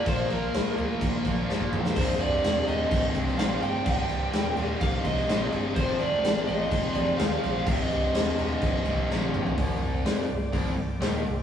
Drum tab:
CC |x-x-x-x-x-x-----|x-x-x-x-x-x-x-x-|x-x-x-x-x-x-x-x-|x-x-x-x-x-x-x-x-|
HH |----------------|----------------|----------------|----------------|
SD |----o-------o--o|----o------oo---|----o------oo---|----o-------o---|
T1 |----------------|----------------|----------------|----------------|
T2 |--------------o-|----------------|----------------|----------------|
FT |----------------|----------------|----------------|----------------|
BD |o-------o-o--o--|o-------o-o-----|o-------o-o-----|o-------o-o-----|

CC |x-x-x-x-x-x-----|----------------|
HH |----------------|o---o---o---o---|
SD |----o-------o---|----o-------o---|
T1 |-------------o--|----------------|
T2 |--------------o-|----------------|
FT |---------------o|----------------|
BD |o-------o-o-----|o-------o-------|